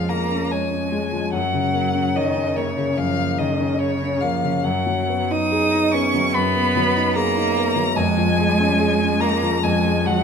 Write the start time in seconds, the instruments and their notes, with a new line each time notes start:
Already playing: grand piano F2 F3 G#3 C#4 C#5, cello F3, violin F5
0.09 grand piano F3, cello A#3, violin A#5
0.31 grand piano C#4
0.51 cello G#3, grand piano C#5, violin G#5
0.71 grand piano C#4
0.92 grand piano G#3
1.12 grand piano F3
1.33 grand piano F#2, cello F#3, violin F#5
1.53 grand piano C#3
1.74 grand piano A#3
1.94 grand piano C#4
2.15 cello D#3, grand piano C#5, violin D#5
2.35 grand piano C#4
2.56 cello C#3, grand piano A#3, violin C#5
2.77 grand piano C#3
2.97 grand piano F#2, cello F3, violin F5
3.19 grand piano A#3
3.38 grand piano C#3, cello D#3, violin D#5
3.60 grand piano C#4
3.79 cello C#3, violin C#5, grand piano C#5
4.02 grand piano C#4
4.20 cello F3, grand piano A#3, violin F5
4.43 grand piano C#3
4.63 grand piano F#2, cello F#3, violin F#5
4.86 grand piano F#3
5.09 grand piano B3
5.31 grand piano D#4, cello D#4, violin D#6
5.52 grand piano G#4
5.73 grand piano D#4
5.92 grand piano B3, cello C#4, violin C#6
6.14 grand piano F#3
6.34 grand piano F#2, cello B3, violin B5
6.56 grand piano B3
6.76 grand piano F#3
6.96 grand piano D#4
7.15 cello A#3, grand piano G#4, violin A#5
7.36 grand piano D#4
7.56 grand piano B3
7.76 grand piano F#3
7.96 grand piano F2, cello G#3, violin G#5
8.17 grand piano F3
8.38 grand piano G#3
8.59 grand piano C#4
8.80 grand piano G#4
9.01 grand piano C#4
9.20 grand piano G#3, cello A#3, violin A#5
9.43 grand piano F3
9.63 grand piano F2, cello G#3, violin G#5
9.86 grand piano G#3
10.06 grand piano F3, cello F#3, violin F#5